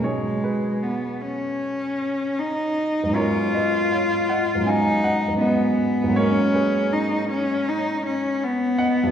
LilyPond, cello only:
\new Staff \with { instrumentName = "Cello" } { \time 4/4 \key gis \dorian \tempo 4 = 79 gis4 b8 cis'4. dis'4 | eis'2 dis'4 b4 | cis'4 dis'8 cis'8 dis'8 cis'8 b4 | }